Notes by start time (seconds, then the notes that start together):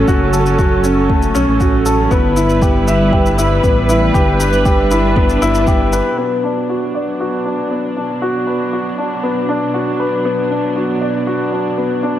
Already playing: F#3 A3 C#4 F#4 A4 C#5
0.08 F#1 F#4, kick, shaker
0.33 A4, shaker
0.46 shaker
0.59 F#4, kick, shaker
0.84 C#4, shaker
1.10 A3, kick
1.22 shaker
1.35 B1 C#4, shaker
1.48 A1
1.60 F#4, kick, shaker
1.86 A4, shaker
2.11 G1 G3 B3 E4 B4, kick, shaker
2.36 E4, shaker
2.49 shaker
2.62 G4, kick, shaker
2.88 E5, shaker
3.13 G4, kick
3.26 shaker
3.38 E4, shaker
3.64 A1 B3, kick, shaker
3.89 E4, shaker
4.14 G1 D4 G4, kick, shaker
4.40 B4, shaker
4.53 shaker
4.65 G4, kick, shaker
4.91 E4, shaker
5.16 B3, kick
5.29 shaker
5.42 G1 E4, shaker
5.54 shaker
5.67 G4, kick, shaker
5.93 B4, shaker
6.18 B2 F#3 B3 D4
6.44 D4
6.70 F#4
6.95 D5
7.20 F#4
7.46 D4
7.71 B3
7.97 D4
8.22 F#4
8.47 B4
8.73 F#4
8.98 D4
9.23 B3
9.49 D4
9.74 F#4
10.00 B4
10.25 B3
10.51 D4
10.76 F#4
11.01 D5
11.27 F#4
11.52 D4
11.78 B3
12.03 D4